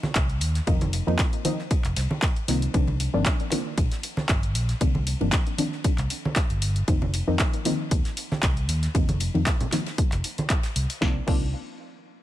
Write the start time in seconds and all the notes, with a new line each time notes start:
Already playing: D#3 F3 A#3 C4 D#4
0.03 snare, high conga
0.15 C2, kick, snare, clap, closed hi-hat, ride
0.29 closed hi-hat
0.41 D#2, open hi-hat, ride
0.55 snare, closed hi-hat
0.67 F1 D#3 F3 A#3 C4 D#4, kick, closed hi-hat, ride
0.81 closed hi-hat, high conga
0.93 open hi-hat, ride
1.07 F2 D#3 F3 A#3 C4 D#4, ride
1.19 kick, snare, clap, closed hi-hat, ride
1.33 closed hi-hat
1.45 D#3 F3 A#3 C4 D#4, open hi-hat, ride, high conga
1.59 snare
1.71 kick, closed hi-hat, ride
1.84 F1, clap, closed hi-hat
1.96 C2, snare, open hi-hat, ride
2.11 high conga
2.22 kick, snare, clap, closed hi-hat, ride
2.36 closed hi-hat, ride
2.48 C2 D#3 F3 A#3 C4 D#4, snare, open hi-hat, ride
2.62 closed hi-hat
2.74 C2 D#3 F3 A#3 C4 D4, kick, closed hi-hat, ride
2.87 ride, high conga
3.00 open hi-hat, ride
3.14 G1 D#3 F3 A#3 C4 D4
3.26 kick, snare, clap, closed hi-hat, ride
3.40 closed hi-hat
3.51 D#3 F3 A#3 C4 D4, clap, open hi-hat, ride, high conga
3.78 A#1, kick, closed hi-hat, ride
3.92 snare, closed hi-hat
4.03 open hi-hat, ride
4.17 snare, high conga
4.29 G1, kick, snare, clap, closed hi-hat, ride
4.43 closed hi-hat
4.55 A#1, open hi-hat, ride
4.69 snare, closed hi-hat
4.81 C2 D#3 F3 A#3 C4 D4, kick, closed hi-hat, ride
4.95 high conga
5.07 open hi-hat, ride
5.21 G1 D#3 F3 A#3 C4 D4, ride
5.32 kick, snare, clap, closed hi-hat, ride
5.47 closed hi-hat
5.58 D#3 F3 A#3 C4 D4, open hi-hat, ride, high conga
5.72 snare
5.84 kick, closed hi-hat, ride
5.98 C2, clap, closed hi-hat
6.10 open hi-hat, ride
6.25 high conga
6.36 kick, snare, clap, closed hi-hat, ride
6.50 G1, closed hi-hat, ride
6.62 open hi-hat, ride
6.76 closed hi-hat
6.88 F1 D#3 F3 A#3 C4 D#4, kick, closed hi-hat, ride
7.02 ride, high conga
7.14 open hi-hat, ride
7.27 F2 D#3 F3 A#3 C4 D#4
7.39 kick, snare, clap, closed hi-hat, ride
7.53 closed hi-hat
7.65 D#3 F3 A#3 C4 D#4, open hi-hat, ride, high conga
7.91 D#2, kick, closed hi-hat, ride
8.05 snare, closed hi-hat
8.17 open hi-hat, ride
8.32 snare, high conga
8.43 C2, kick, snare, clap, closed hi-hat, ride
8.57 closed hi-hat
8.69 D#2, open hi-hat, ride
8.83 snare, closed hi-hat
8.95 F1 D#3 F3 A#3 C4 D#4, kick, closed hi-hat, ride
9.09 closed hi-hat, high conga
9.20 open hi-hat, ride
9.34 F2 D#3 F3 A#3 C4 D#4, ride
9.46 kick, snare, clap, closed hi-hat, ride
9.61 closed hi-hat, low conga
9.72 D#3 F3 A#3 C4 D#4, snare, clap, open hi-hat, ride, high conga
9.86 snare, ride
9.98 kick, closed hi-hat
10.12 F1, clap, closed hi-hat
10.24 open hi-hat, ride
10.38 closed hi-hat, high conga
10.50 kick, clap, closed hi-hat, ride
10.63 snare, closed hi-hat, ride
10.76 C2, open hi-hat, ride
10.90 open hi-hat, ride
11.01 C2 D#3 F3 A#3 C4 D4, kick, snare
11.27 C2 D#3 F3 A#3 C4 D4, kick, crash